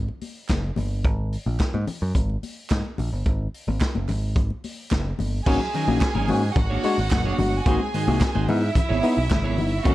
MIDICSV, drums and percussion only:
0, 0, Header, 1, 2, 480
1, 0, Start_track
1, 0, Tempo, 550964
1, 912, Time_signature, 4, 2, 24, 8
1, 8666, End_track
2, 0, Start_track
2, 0, Title_t, "Drums"
2, 74, Note_on_c, 9, 62, 32
2, 161, Note_off_c, 9, 62, 0
2, 185, Note_on_c, 9, 46, 61
2, 190, Note_on_c, 9, 63, 47
2, 272, Note_off_c, 9, 46, 0
2, 277, Note_off_c, 9, 63, 0
2, 422, Note_on_c, 9, 42, 70
2, 425, Note_on_c, 9, 39, 86
2, 431, Note_on_c, 9, 36, 94
2, 432, Note_on_c, 9, 62, 32
2, 432, Note_on_c, 9, 63, 70
2, 435, Note_on_c, 9, 38, 100
2, 442, Note_off_c, 9, 39, 0
2, 442, Note_on_c, 9, 39, 84
2, 509, Note_off_c, 9, 42, 0
2, 518, Note_off_c, 9, 36, 0
2, 519, Note_off_c, 9, 62, 0
2, 519, Note_off_c, 9, 63, 0
2, 522, Note_off_c, 9, 38, 0
2, 529, Note_off_c, 9, 39, 0
2, 664, Note_on_c, 9, 63, 74
2, 664, Note_on_c, 9, 64, 66
2, 672, Note_on_c, 9, 46, 64
2, 751, Note_off_c, 9, 63, 0
2, 751, Note_off_c, 9, 64, 0
2, 759, Note_off_c, 9, 46, 0
2, 909, Note_on_c, 9, 42, 50
2, 910, Note_on_c, 9, 36, 109
2, 996, Note_off_c, 9, 42, 0
2, 997, Note_off_c, 9, 36, 0
2, 1153, Note_on_c, 9, 46, 55
2, 1240, Note_off_c, 9, 46, 0
2, 1276, Note_on_c, 9, 63, 69
2, 1363, Note_off_c, 9, 63, 0
2, 1388, Note_on_c, 9, 42, 60
2, 1391, Note_on_c, 9, 62, 38
2, 1392, Note_on_c, 9, 36, 101
2, 1393, Note_on_c, 9, 39, 74
2, 1395, Note_on_c, 9, 38, 95
2, 1402, Note_off_c, 9, 39, 0
2, 1402, Note_on_c, 9, 39, 71
2, 1475, Note_off_c, 9, 42, 0
2, 1479, Note_off_c, 9, 36, 0
2, 1479, Note_off_c, 9, 62, 0
2, 1482, Note_off_c, 9, 38, 0
2, 1489, Note_off_c, 9, 39, 0
2, 1519, Note_on_c, 9, 62, 29
2, 1519, Note_on_c, 9, 63, 73
2, 1606, Note_off_c, 9, 62, 0
2, 1606, Note_off_c, 9, 63, 0
2, 1631, Note_on_c, 9, 46, 67
2, 1632, Note_on_c, 9, 64, 84
2, 1718, Note_off_c, 9, 46, 0
2, 1719, Note_off_c, 9, 64, 0
2, 1872, Note_on_c, 9, 36, 101
2, 1874, Note_on_c, 9, 42, 61
2, 1874, Note_on_c, 9, 62, 37
2, 1874, Note_on_c, 9, 64, 75
2, 1959, Note_off_c, 9, 36, 0
2, 1961, Note_off_c, 9, 62, 0
2, 1961, Note_off_c, 9, 64, 0
2, 1962, Note_off_c, 9, 42, 0
2, 2001, Note_on_c, 9, 62, 32
2, 2088, Note_off_c, 9, 62, 0
2, 2116, Note_on_c, 9, 46, 63
2, 2118, Note_on_c, 9, 63, 47
2, 2203, Note_off_c, 9, 46, 0
2, 2205, Note_off_c, 9, 63, 0
2, 2352, Note_on_c, 9, 39, 90
2, 2353, Note_on_c, 9, 42, 68
2, 2361, Note_on_c, 9, 36, 107
2, 2361, Note_on_c, 9, 63, 70
2, 2366, Note_on_c, 9, 38, 105
2, 2373, Note_off_c, 9, 39, 0
2, 2373, Note_on_c, 9, 39, 86
2, 2440, Note_off_c, 9, 42, 0
2, 2448, Note_off_c, 9, 36, 0
2, 2449, Note_off_c, 9, 63, 0
2, 2453, Note_off_c, 9, 38, 0
2, 2460, Note_off_c, 9, 39, 0
2, 2483, Note_on_c, 9, 62, 30
2, 2570, Note_off_c, 9, 62, 0
2, 2597, Note_on_c, 9, 63, 67
2, 2597, Note_on_c, 9, 64, 70
2, 2603, Note_on_c, 9, 46, 60
2, 2685, Note_off_c, 9, 63, 0
2, 2685, Note_off_c, 9, 64, 0
2, 2691, Note_off_c, 9, 46, 0
2, 2838, Note_on_c, 9, 42, 57
2, 2839, Note_on_c, 9, 36, 95
2, 2925, Note_off_c, 9, 42, 0
2, 2926, Note_off_c, 9, 36, 0
2, 3085, Note_on_c, 9, 46, 60
2, 3172, Note_off_c, 9, 46, 0
2, 3204, Note_on_c, 9, 63, 73
2, 3291, Note_off_c, 9, 63, 0
2, 3317, Note_on_c, 9, 39, 89
2, 3318, Note_on_c, 9, 62, 38
2, 3319, Note_on_c, 9, 42, 53
2, 3320, Note_on_c, 9, 36, 102
2, 3325, Note_on_c, 9, 38, 103
2, 3332, Note_off_c, 9, 39, 0
2, 3332, Note_on_c, 9, 39, 80
2, 3405, Note_off_c, 9, 62, 0
2, 3406, Note_off_c, 9, 42, 0
2, 3407, Note_off_c, 9, 36, 0
2, 3412, Note_off_c, 9, 38, 0
2, 3419, Note_off_c, 9, 39, 0
2, 3443, Note_on_c, 9, 62, 31
2, 3443, Note_on_c, 9, 63, 74
2, 3530, Note_off_c, 9, 62, 0
2, 3530, Note_off_c, 9, 63, 0
2, 3558, Note_on_c, 9, 46, 62
2, 3559, Note_on_c, 9, 64, 74
2, 3561, Note_on_c, 9, 39, 67
2, 3645, Note_off_c, 9, 46, 0
2, 3646, Note_off_c, 9, 64, 0
2, 3648, Note_off_c, 9, 39, 0
2, 3797, Note_on_c, 9, 36, 108
2, 3799, Note_on_c, 9, 42, 61
2, 3802, Note_on_c, 9, 62, 38
2, 3802, Note_on_c, 9, 64, 71
2, 3885, Note_off_c, 9, 36, 0
2, 3886, Note_off_c, 9, 42, 0
2, 3889, Note_off_c, 9, 62, 0
2, 3889, Note_off_c, 9, 64, 0
2, 3923, Note_on_c, 9, 62, 33
2, 4010, Note_off_c, 9, 62, 0
2, 4039, Note_on_c, 9, 46, 71
2, 4046, Note_on_c, 9, 63, 45
2, 4126, Note_off_c, 9, 46, 0
2, 4133, Note_off_c, 9, 63, 0
2, 4276, Note_on_c, 9, 42, 65
2, 4280, Note_on_c, 9, 39, 93
2, 4280, Note_on_c, 9, 63, 71
2, 4284, Note_on_c, 9, 36, 104
2, 4289, Note_on_c, 9, 38, 111
2, 4296, Note_off_c, 9, 39, 0
2, 4296, Note_on_c, 9, 39, 85
2, 4363, Note_off_c, 9, 42, 0
2, 4367, Note_off_c, 9, 63, 0
2, 4372, Note_off_c, 9, 36, 0
2, 4376, Note_off_c, 9, 38, 0
2, 4383, Note_off_c, 9, 39, 0
2, 4401, Note_on_c, 9, 62, 32
2, 4488, Note_off_c, 9, 62, 0
2, 4519, Note_on_c, 9, 63, 74
2, 4519, Note_on_c, 9, 64, 71
2, 4526, Note_on_c, 9, 46, 59
2, 4606, Note_off_c, 9, 63, 0
2, 4606, Note_off_c, 9, 64, 0
2, 4613, Note_off_c, 9, 46, 0
2, 4760, Note_on_c, 9, 36, 118
2, 4761, Note_on_c, 9, 49, 102
2, 4847, Note_off_c, 9, 36, 0
2, 4848, Note_off_c, 9, 49, 0
2, 4882, Note_on_c, 9, 62, 36
2, 4969, Note_off_c, 9, 62, 0
2, 5001, Note_on_c, 9, 46, 61
2, 5088, Note_off_c, 9, 46, 0
2, 5124, Note_on_c, 9, 63, 84
2, 5211, Note_off_c, 9, 63, 0
2, 5236, Note_on_c, 9, 42, 64
2, 5237, Note_on_c, 9, 62, 39
2, 5238, Note_on_c, 9, 36, 119
2, 5238, Note_on_c, 9, 39, 105
2, 5243, Note_on_c, 9, 38, 114
2, 5250, Note_off_c, 9, 39, 0
2, 5250, Note_on_c, 9, 39, 95
2, 5323, Note_off_c, 9, 42, 0
2, 5324, Note_off_c, 9, 62, 0
2, 5325, Note_off_c, 9, 36, 0
2, 5330, Note_off_c, 9, 38, 0
2, 5337, Note_off_c, 9, 39, 0
2, 5360, Note_on_c, 9, 63, 85
2, 5447, Note_off_c, 9, 63, 0
2, 5474, Note_on_c, 9, 64, 86
2, 5475, Note_on_c, 9, 46, 74
2, 5562, Note_off_c, 9, 46, 0
2, 5562, Note_off_c, 9, 64, 0
2, 5714, Note_on_c, 9, 36, 121
2, 5717, Note_on_c, 9, 42, 70
2, 5717, Note_on_c, 9, 62, 45
2, 5717, Note_on_c, 9, 64, 91
2, 5801, Note_off_c, 9, 36, 0
2, 5804, Note_off_c, 9, 42, 0
2, 5804, Note_off_c, 9, 62, 0
2, 5804, Note_off_c, 9, 64, 0
2, 5952, Note_on_c, 9, 46, 79
2, 5961, Note_on_c, 9, 63, 52
2, 6039, Note_off_c, 9, 46, 0
2, 6048, Note_off_c, 9, 63, 0
2, 6189, Note_on_c, 9, 42, 73
2, 6191, Note_on_c, 9, 39, 104
2, 6199, Note_on_c, 9, 36, 116
2, 6202, Note_on_c, 9, 38, 122
2, 6202, Note_on_c, 9, 62, 41
2, 6202, Note_on_c, 9, 63, 87
2, 6209, Note_off_c, 9, 39, 0
2, 6209, Note_on_c, 9, 39, 98
2, 6276, Note_off_c, 9, 42, 0
2, 6286, Note_off_c, 9, 36, 0
2, 6289, Note_off_c, 9, 38, 0
2, 6289, Note_off_c, 9, 62, 0
2, 6289, Note_off_c, 9, 63, 0
2, 6297, Note_off_c, 9, 39, 0
2, 6319, Note_on_c, 9, 62, 36
2, 6406, Note_off_c, 9, 62, 0
2, 6433, Note_on_c, 9, 63, 76
2, 6433, Note_on_c, 9, 64, 83
2, 6437, Note_on_c, 9, 46, 66
2, 6520, Note_off_c, 9, 63, 0
2, 6520, Note_off_c, 9, 64, 0
2, 6525, Note_off_c, 9, 46, 0
2, 6672, Note_on_c, 9, 42, 64
2, 6673, Note_on_c, 9, 36, 120
2, 6759, Note_off_c, 9, 42, 0
2, 6761, Note_off_c, 9, 36, 0
2, 6793, Note_on_c, 9, 62, 36
2, 6880, Note_off_c, 9, 62, 0
2, 6916, Note_on_c, 9, 46, 68
2, 7003, Note_off_c, 9, 46, 0
2, 7037, Note_on_c, 9, 63, 84
2, 7124, Note_off_c, 9, 63, 0
2, 7150, Note_on_c, 9, 42, 63
2, 7151, Note_on_c, 9, 39, 97
2, 7152, Note_on_c, 9, 36, 124
2, 7152, Note_on_c, 9, 62, 38
2, 7157, Note_on_c, 9, 38, 114
2, 7164, Note_off_c, 9, 39, 0
2, 7164, Note_on_c, 9, 39, 86
2, 7237, Note_off_c, 9, 42, 0
2, 7239, Note_off_c, 9, 36, 0
2, 7239, Note_off_c, 9, 62, 0
2, 7244, Note_off_c, 9, 38, 0
2, 7251, Note_off_c, 9, 39, 0
2, 7276, Note_on_c, 9, 62, 38
2, 7276, Note_on_c, 9, 63, 76
2, 7363, Note_off_c, 9, 62, 0
2, 7363, Note_off_c, 9, 63, 0
2, 7390, Note_on_c, 9, 46, 72
2, 7392, Note_on_c, 9, 64, 87
2, 7477, Note_off_c, 9, 46, 0
2, 7479, Note_off_c, 9, 64, 0
2, 7626, Note_on_c, 9, 36, 112
2, 7628, Note_on_c, 9, 42, 65
2, 7638, Note_on_c, 9, 64, 92
2, 7714, Note_off_c, 9, 36, 0
2, 7715, Note_off_c, 9, 42, 0
2, 7725, Note_off_c, 9, 64, 0
2, 7864, Note_on_c, 9, 46, 70
2, 7880, Note_on_c, 9, 63, 49
2, 7951, Note_off_c, 9, 46, 0
2, 7967, Note_off_c, 9, 63, 0
2, 8100, Note_on_c, 9, 42, 74
2, 8107, Note_on_c, 9, 39, 91
2, 8110, Note_on_c, 9, 36, 120
2, 8113, Note_on_c, 9, 38, 122
2, 8115, Note_on_c, 9, 62, 38
2, 8115, Note_on_c, 9, 63, 74
2, 8120, Note_off_c, 9, 39, 0
2, 8120, Note_on_c, 9, 39, 102
2, 8187, Note_off_c, 9, 42, 0
2, 8197, Note_off_c, 9, 36, 0
2, 8200, Note_off_c, 9, 38, 0
2, 8202, Note_off_c, 9, 62, 0
2, 8202, Note_off_c, 9, 63, 0
2, 8207, Note_off_c, 9, 39, 0
2, 8235, Note_on_c, 9, 62, 40
2, 8322, Note_off_c, 9, 62, 0
2, 8347, Note_on_c, 9, 46, 73
2, 8347, Note_on_c, 9, 63, 78
2, 8347, Note_on_c, 9, 64, 82
2, 8434, Note_off_c, 9, 46, 0
2, 8435, Note_off_c, 9, 63, 0
2, 8435, Note_off_c, 9, 64, 0
2, 8583, Note_on_c, 9, 42, 66
2, 8585, Note_on_c, 9, 36, 121
2, 8666, Note_off_c, 9, 36, 0
2, 8666, Note_off_c, 9, 42, 0
2, 8666, End_track
0, 0, End_of_file